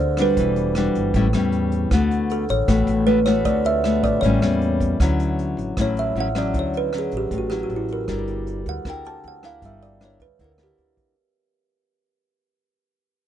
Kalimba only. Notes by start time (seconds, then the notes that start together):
Already playing: C5
0.22 B4
2.32 A4
2.50 C#5
3.07 B4
3.26 C#5
3.45 D5
3.66 E5
4.04 D5
4.21 C#5
5.81 C#5
5.99 E5
6.20 F#5
6.38 D5
6.59 C#5
6.77 B4
6.98 G#4
7.17 G4
7.38 F#4
7.50 G4
7.63 F#4
7.76 E4
7.93 A#4
8.69 F#5
8.90 G5
9.07 A5
9.28 F#5
9.45 F5
9.65 E5
9.83 D5
10.05 C#5
10.22 B4
10.44 A#4
10.63 G4